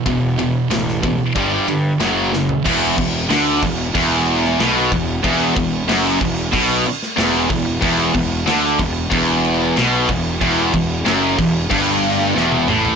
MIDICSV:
0, 0, Header, 1, 6, 480
1, 0, Start_track
1, 0, Key_signature, 1, "minor"
1, 0, Tempo, 647249
1, 43, Time_signature, 4, 2, 24, 8
1, 9608, End_track
2, 0, Start_track
2, 0, Title_t, "Distorted electric guitar"
2, 0, Program_c, 0, 30
2, 43, Note_on_c, 0, 40, 77
2, 46, Note_on_c, 0, 47, 80
2, 260, Note_off_c, 0, 40, 0
2, 261, Note_off_c, 0, 47, 0
2, 286, Note_on_c, 0, 40, 61
2, 290, Note_on_c, 0, 47, 71
2, 501, Note_off_c, 0, 40, 0
2, 503, Note_off_c, 0, 47, 0
2, 524, Note_on_c, 0, 40, 70
2, 526, Note_on_c, 0, 47, 78
2, 740, Note_off_c, 0, 40, 0
2, 741, Note_off_c, 0, 47, 0
2, 767, Note_on_c, 0, 40, 74
2, 770, Note_on_c, 0, 47, 68
2, 982, Note_off_c, 0, 40, 0
2, 984, Note_off_c, 0, 47, 0
2, 1004, Note_on_c, 0, 43, 94
2, 1007, Note_on_c, 0, 50, 95
2, 1007, Note_on_c, 0, 55, 102
2, 1230, Note_off_c, 0, 43, 0
2, 1231, Note_off_c, 0, 50, 0
2, 1232, Note_off_c, 0, 55, 0
2, 1249, Note_on_c, 0, 43, 66
2, 1251, Note_on_c, 0, 50, 78
2, 1463, Note_off_c, 0, 43, 0
2, 1464, Note_off_c, 0, 50, 0
2, 1482, Note_on_c, 0, 42, 81
2, 1484, Note_on_c, 0, 49, 79
2, 1487, Note_on_c, 0, 54, 85
2, 1709, Note_off_c, 0, 42, 0
2, 1710, Note_off_c, 0, 49, 0
2, 1712, Note_off_c, 0, 54, 0
2, 1722, Note_on_c, 0, 42, 65
2, 1726, Note_on_c, 0, 49, 84
2, 1940, Note_off_c, 0, 42, 0
2, 1942, Note_off_c, 0, 49, 0
2, 1968, Note_on_c, 0, 40, 116
2, 2199, Note_off_c, 0, 40, 0
2, 2212, Note_on_c, 0, 40, 78
2, 2400, Note_off_c, 0, 40, 0
2, 2451, Note_on_c, 0, 50, 98
2, 2680, Note_off_c, 0, 50, 0
2, 2693, Note_on_c, 0, 40, 71
2, 2881, Note_off_c, 0, 40, 0
2, 2928, Note_on_c, 0, 40, 110
2, 3399, Note_off_c, 0, 40, 0
2, 3409, Note_on_c, 0, 47, 96
2, 3639, Note_off_c, 0, 47, 0
2, 3649, Note_on_c, 0, 40, 78
2, 3838, Note_off_c, 0, 40, 0
2, 3885, Note_on_c, 0, 40, 110
2, 4117, Note_off_c, 0, 40, 0
2, 4131, Note_on_c, 0, 40, 70
2, 4319, Note_off_c, 0, 40, 0
2, 4368, Note_on_c, 0, 42, 88
2, 4599, Note_off_c, 0, 42, 0
2, 4604, Note_on_c, 0, 40, 70
2, 4795, Note_off_c, 0, 40, 0
2, 4844, Note_on_c, 0, 47, 114
2, 5076, Note_off_c, 0, 47, 0
2, 5314, Note_on_c, 0, 40, 99
2, 5546, Note_off_c, 0, 40, 0
2, 5555, Note_on_c, 0, 40, 77
2, 5751, Note_off_c, 0, 40, 0
2, 5794, Note_on_c, 0, 40, 114
2, 6026, Note_off_c, 0, 40, 0
2, 6035, Note_on_c, 0, 40, 70
2, 6230, Note_off_c, 0, 40, 0
2, 6276, Note_on_c, 0, 50, 90
2, 6512, Note_off_c, 0, 50, 0
2, 6518, Note_on_c, 0, 40, 71
2, 6712, Note_off_c, 0, 40, 0
2, 6751, Note_on_c, 0, 40, 117
2, 7230, Note_off_c, 0, 40, 0
2, 7243, Note_on_c, 0, 47, 96
2, 7476, Note_off_c, 0, 47, 0
2, 7485, Note_on_c, 0, 40, 82
2, 7676, Note_off_c, 0, 40, 0
2, 7725, Note_on_c, 0, 40, 111
2, 7957, Note_off_c, 0, 40, 0
2, 7967, Note_on_c, 0, 40, 68
2, 8157, Note_off_c, 0, 40, 0
2, 8198, Note_on_c, 0, 42, 92
2, 8434, Note_off_c, 0, 42, 0
2, 8444, Note_on_c, 0, 40, 81
2, 8636, Note_off_c, 0, 40, 0
2, 8677, Note_on_c, 0, 43, 117
2, 9154, Note_off_c, 0, 43, 0
2, 9166, Note_on_c, 0, 40, 98
2, 9399, Note_off_c, 0, 40, 0
2, 9410, Note_on_c, 0, 45, 110
2, 9608, Note_off_c, 0, 45, 0
2, 9608, End_track
3, 0, Start_track
3, 0, Title_t, "Picked electric bass"
3, 0, Program_c, 1, 34
3, 42, Note_on_c, 1, 28, 93
3, 387, Note_off_c, 1, 28, 0
3, 522, Note_on_c, 1, 33, 89
3, 867, Note_off_c, 1, 33, 0
3, 1007, Note_on_c, 1, 31, 91
3, 1178, Note_off_c, 1, 31, 0
3, 1246, Note_on_c, 1, 43, 87
3, 1417, Note_off_c, 1, 43, 0
3, 1485, Note_on_c, 1, 30, 88
3, 1829, Note_off_c, 1, 30, 0
3, 1970, Note_on_c, 1, 28, 91
3, 2191, Note_off_c, 1, 28, 0
3, 2208, Note_on_c, 1, 28, 74
3, 2430, Note_off_c, 1, 28, 0
3, 2449, Note_on_c, 1, 38, 103
3, 2670, Note_off_c, 1, 38, 0
3, 2690, Note_on_c, 1, 28, 73
3, 2910, Note_off_c, 1, 28, 0
3, 2929, Note_on_c, 1, 28, 96
3, 3377, Note_off_c, 1, 28, 0
3, 3410, Note_on_c, 1, 35, 92
3, 3630, Note_off_c, 1, 35, 0
3, 3649, Note_on_c, 1, 28, 87
3, 3870, Note_off_c, 1, 28, 0
3, 3888, Note_on_c, 1, 28, 89
3, 4109, Note_off_c, 1, 28, 0
3, 4123, Note_on_c, 1, 28, 82
3, 4346, Note_off_c, 1, 28, 0
3, 4362, Note_on_c, 1, 30, 111
3, 4586, Note_off_c, 1, 30, 0
3, 4604, Note_on_c, 1, 28, 79
3, 4827, Note_off_c, 1, 28, 0
3, 4845, Note_on_c, 1, 35, 101
3, 5067, Note_off_c, 1, 35, 0
3, 5322, Note_on_c, 1, 28, 103
3, 5546, Note_off_c, 1, 28, 0
3, 5561, Note_on_c, 1, 28, 89
3, 5785, Note_off_c, 1, 28, 0
3, 5803, Note_on_c, 1, 28, 96
3, 6026, Note_off_c, 1, 28, 0
3, 6040, Note_on_c, 1, 28, 72
3, 6264, Note_off_c, 1, 28, 0
3, 6290, Note_on_c, 1, 38, 102
3, 6510, Note_off_c, 1, 38, 0
3, 6523, Note_on_c, 1, 28, 82
3, 6746, Note_off_c, 1, 28, 0
3, 6758, Note_on_c, 1, 28, 102
3, 7210, Note_off_c, 1, 28, 0
3, 7248, Note_on_c, 1, 35, 93
3, 7468, Note_off_c, 1, 35, 0
3, 7481, Note_on_c, 1, 28, 93
3, 7705, Note_off_c, 1, 28, 0
3, 7722, Note_on_c, 1, 28, 94
3, 7946, Note_off_c, 1, 28, 0
3, 7961, Note_on_c, 1, 28, 73
3, 8185, Note_off_c, 1, 28, 0
3, 8205, Note_on_c, 1, 30, 105
3, 8427, Note_off_c, 1, 30, 0
3, 8442, Note_on_c, 1, 28, 71
3, 8666, Note_off_c, 1, 28, 0
3, 8684, Note_on_c, 1, 31, 102
3, 9135, Note_off_c, 1, 31, 0
3, 9164, Note_on_c, 1, 28, 92
3, 9388, Note_off_c, 1, 28, 0
3, 9409, Note_on_c, 1, 33, 101
3, 9608, Note_off_c, 1, 33, 0
3, 9608, End_track
4, 0, Start_track
4, 0, Title_t, "Muted distorted electric guitar strokes"
4, 5077, Note_on_c, 9, 29, 65
4, 5151, Note_off_c, 9, 29, 0
4, 9608, End_track
5, 0, Start_track
5, 0, Title_t, "Muted picked electric bass strokes"
5, 5086, Note_on_c, 9, 29, 44
5, 5160, Note_off_c, 9, 29, 0
5, 9608, End_track
6, 0, Start_track
6, 0, Title_t, "Drums"
6, 45, Note_on_c, 9, 36, 111
6, 45, Note_on_c, 9, 51, 87
6, 119, Note_off_c, 9, 36, 0
6, 119, Note_off_c, 9, 51, 0
6, 288, Note_on_c, 9, 51, 64
6, 362, Note_off_c, 9, 51, 0
6, 527, Note_on_c, 9, 51, 98
6, 530, Note_on_c, 9, 38, 105
6, 601, Note_off_c, 9, 51, 0
6, 604, Note_off_c, 9, 38, 0
6, 653, Note_on_c, 9, 38, 35
6, 728, Note_off_c, 9, 38, 0
6, 767, Note_on_c, 9, 36, 95
6, 768, Note_on_c, 9, 51, 67
6, 841, Note_off_c, 9, 36, 0
6, 842, Note_off_c, 9, 51, 0
6, 1006, Note_on_c, 9, 51, 91
6, 1007, Note_on_c, 9, 36, 87
6, 1080, Note_off_c, 9, 51, 0
6, 1081, Note_off_c, 9, 36, 0
6, 1247, Note_on_c, 9, 51, 63
6, 1321, Note_off_c, 9, 51, 0
6, 1485, Note_on_c, 9, 51, 95
6, 1489, Note_on_c, 9, 38, 96
6, 1559, Note_off_c, 9, 51, 0
6, 1563, Note_off_c, 9, 38, 0
6, 1729, Note_on_c, 9, 38, 65
6, 1803, Note_off_c, 9, 38, 0
6, 1848, Note_on_c, 9, 43, 88
6, 1922, Note_off_c, 9, 43, 0
6, 1971, Note_on_c, 9, 36, 102
6, 1972, Note_on_c, 9, 49, 121
6, 1972, Note_on_c, 9, 57, 82
6, 2045, Note_off_c, 9, 36, 0
6, 2046, Note_off_c, 9, 49, 0
6, 2046, Note_off_c, 9, 57, 0
6, 2210, Note_on_c, 9, 36, 99
6, 2214, Note_on_c, 9, 57, 76
6, 2285, Note_off_c, 9, 36, 0
6, 2288, Note_off_c, 9, 57, 0
6, 2449, Note_on_c, 9, 57, 89
6, 2453, Note_on_c, 9, 38, 116
6, 2523, Note_off_c, 9, 57, 0
6, 2527, Note_off_c, 9, 38, 0
6, 2690, Note_on_c, 9, 36, 96
6, 2690, Note_on_c, 9, 57, 71
6, 2764, Note_off_c, 9, 36, 0
6, 2764, Note_off_c, 9, 57, 0
6, 2928, Note_on_c, 9, 57, 88
6, 2929, Note_on_c, 9, 36, 111
6, 3002, Note_off_c, 9, 57, 0
6, 3003, Note_off_c, 9, 36, 0
6, 3170, Note_on_c, 9, 57, 59
6, 3244, Note_off_c, 9, 57, 0
6, 3296, Note_on_c, 9, 38, 38
6, 3370, Note_off_c, 9, 38, 0
6, 3412, Note_on_c, 9, 57, 75
6, 3415, Note_on_c, 9, 38, 108
6, 3486, Note_off_c, 9, 57, 0
6, 3489, Note_off_c, 9, 38, 0
6, 3535, Note_on_c, 9, 38, 35
6, 3609, Note_off_c, 9, 38, 0
6, 3649, Note_on_c, 9, 36, 96
6, 3649, Note_on_c, 9, 57, 59
6, 3723, Note_off_c, 9, 36, 0
6, 3724, Note_off_c, 9, 57, 0
6, 3888, Note_on_c, 9, 36, 101
6, 3890, Note_on_c, 9, 57, 86
6, 3962, Note_off_c, 9, 36, 0
6, 3964, Note_off_c, 9, 57, 0
6, 4127, Note_on_c, 9, 36, 109
6, 4131, Note_on_c, 9, 57, 64
6, 4201, Note_off_c, 9, 36, 0
6, 4205, Note_off_c, 9, 57, 0
6, 4368, Note_on_c, 9, 57, 97
6, 4372, Note_on_c, 9, 38, 114
6, 4442, Note_off_c, 9, 57, 0
6, 4446, Note_off_c, 9, 38, 0
6, 4606, Note_on_c, 9, 36, 98
6, 4610, Note_on_c, 9, 57, 76
6, 4680, Note_off_c, 9, 36, 0
6, 4684, Note_off_c, 9, 57, 0
6, 4846, Note_on_c, 9, 36, 113
6, 4851, Note_on_c, 9, 57, 94
6, 4920, Note_off_c, 9, 36, 0
6, 4925, Note_off_c, 9, 57, 0
6, 5087, Note_on_c, 9, 57, 68
6, 5161, Note_off_c, 9, 57, 0
6, 5210, Note_on_c, 9, 38, 38
6, 5284, Note_off_c, 9, 38, 0
6, 5326, Note_on_c, 9, 57, 87
6, 5329, Note_on_c, 9, 38, 103
6, 5400, Note_off_c, 9, 57, 0
6, 5404, Note_off_c, 9, 38, 0
6, 5450, Note_on_c, 9, 38, 33
6, 5524, Note_off_c, 9, 38, 0
6, 5563, Note_on_c, 9, 36, 102
6, 5565, Note_on_c, 9, 57, 68
6, 5637, Note_off_c, 9, 36, 0
6, 5639, Note_off_c, 9, 57, 0
6, 5801, Note_on_c, 9, 57, 93
6, 5802, Note_on_c, 9, 36, 113
6, 5876, Note_off_c, 9, 36, 0
6, 5876, Note_off_c, 9, 57, 0
6, 6042, Note_on_c, 9, 36, 95
6, 6042, Note_on_c, 9, 57, 74
6, 6116, Note_off_c, 9, 36, 0
6, 6116, Note_off_c, 9, 57, 0
6, 6283, Note_on_c, 9, 57, 92
6, 6286, Note_on_c, 9, 38, 121
6, 6357, Note_off_c, 9, 57, 0
6, 6361, Note_off_c, 9, 38, 0
6, 6521, Note_on_c, 9, 36, 105
6, 6522, Note_on_c, 9, 57, 70
6, 6596, Note_off_c, 9, 36, 0
6, 6596, Note_off_c, 9, 57, 0
6, 6761, Note_on_c, 9, 36, 112
6, 6761, Note_on_c, 9, 57, 89
6, 6835, Note_off_c, 9, 36, 0
6, 6836, Note_off_c, 9, 57, 0
6, 7004, Note_on_c, 9, 57, 64
6, 7078, Note_off_c, 9, 57, 0
6, 7243, Note_on_c, 9, 57, 76
6, 7247, Note_on_c, 9, 38, 100
6, 7317, Note_off_c, 9, 57, 0
6, 7321, Note_off_c, 9, 38, 0
6, 7482, Note_on_c, 9, 36, 89
6, 7482, Note_on_c, 9, 57, 66
6, 7556, Note_off_c, 9, 36, 0
6, 7556, Note_off_c, 9, 57, 0
6, 7723, Note_on_c, 9, 36, 96
6, 7725, Note_on_c, 9, 57, 84
6, 7797, Note_off_c, 9, 36, 0
6, 7799, Note_off_c, 9, 57, 0
6, 7963, Note_on_c, 9, 36, 96
6, 7963, Note_on_c, 9, 57, 68
6, 8037, Note_off_c, 9, 36, 0
6, 8037, Note_off_c, 9, 57, 0
6, 8201, Note_on_c, 9, 57, 77
6, 8205, Note_on_c, 9, 38, 111
6, 8276, Note_off_c, 9, 57, 0
6, 8279, Note_off_c, 9, 38, 0
6, 8444, Note_on_c, 9, 36, 103
6, 8447, Note_on_c, 9, 57, 70
6, 8518, Note_off_c, 9, 36, 0
6, 8521, Note_off_c, 9, 57, 0
6, 8685, Note_on_c, 9, 36, 124
6, 8686, Note_on_c, 9, 57, 93
6, 8759, Note_off_c, 9, 36, 0
6, 8760, Note_off_c, 9, 57, 0
6, 8925, Note_on_c, 9, 57, 71
6, 8999, Note_off_c, 9, 57, 0
6, 9048, Note_on_c, 9, 38, 38
6, 9123, Note_off_c, 9, 38, 0
6, 9173, Note_on_c, 9, 38, 57
6, 9247, Note_off_c, 9, 38, 0
6, 9286, Note_on_c, 9, 48, 69
6, 9360, Note_off_c, 9, 48, 0
6, 9405, Note_on_c, 9, 45, 105
6, 9479, Note_off_c, 9, 45, 0
6, 9528, Note_on_c, 9, 43, 102
6, 9602, Note_off_c, 9, 43, 0
6, 9608, End_track
0, 0, End_of_file